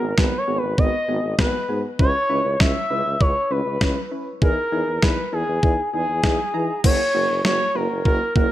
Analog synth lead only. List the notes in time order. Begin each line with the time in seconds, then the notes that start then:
Already playing: A#4
0.18 B4
0.38 C#5
0.58 B4
0.78 D#5
1.39 B4
1.99 C#5
2.60 E5
3.21 C#5
3.51 B4
4.42 A#4
5.03 B4
5.33 G#4
5.94 G#4
6.84 C#5
7.45 C#5
7.75 A#4
8.05 A#4
8.36 A#4